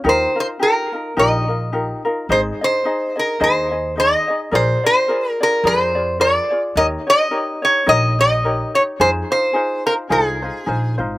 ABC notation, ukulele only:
X:1
M:4/4
L:1/8
Q:"Swing" 1/4=107
K:Ebmix
V:1 name="Ukulele"
[EFGB] [EFB] [EFGB] [EFB] [EFGB] [EFB] [EFGB] [EFB] | [EAce] [EAe] [EAce] [EAe] [EAce] [EAe] [EAce] [EAe] | [FAB=d] [FAd] [FABd] [FAd] [FABd] [FAd] [FABd] [FAd] | [EGBd] [EGd] [EGBd] [EGd] [EGBd] [EGd] [EGBd] [EGd] |
[EFAc] [EFc] [EFAc] [EFc] [EFAc] [EFc] [EFAc] [EFc] |]